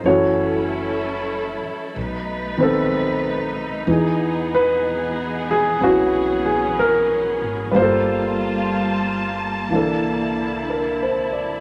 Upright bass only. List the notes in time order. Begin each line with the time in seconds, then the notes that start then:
0.04 F#1
1.64 muted upright bass stroke
1.96 B1
3.87 E2
5.80 B1
7.41 G#1
7.74 G1
9.69 C2